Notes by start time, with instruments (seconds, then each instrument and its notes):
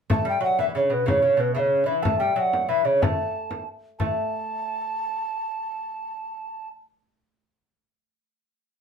0.10 lute A3, recorder A5, frame drum
0.25 lute G3
0.29 recorder G5
0.41 lute F#3, recorder F#5
0.58 lute E3, recorder E5, frame drum
0.75 lute C#3, recorder C#5, frame drum
0.90 lute B2, recorder B4
1.06 lute C#3, recorder C#5, frame drum
1.22 lute C#3
1.37 lute B2, recorder B4
1.54 lute C#3, recorder E5, frame drum
1.59 recorder C#5
1.73 frame drum
1.86 lute E3, recorder E5
2.03 lute A3, recorder A5, frame drum
2.19 lute G3, recorder G5
2.36 lute F#3, recorder G5
2.40 recorder F#5
2.53 frame drum
2.69 lute E3, recorder E5, frame drum
2.85 lute C#3, recorder C#5
3.02 lute A3, recorder A5, frame drum
3.51 frame drum
3.99 lute A3, recorder A5, frame drum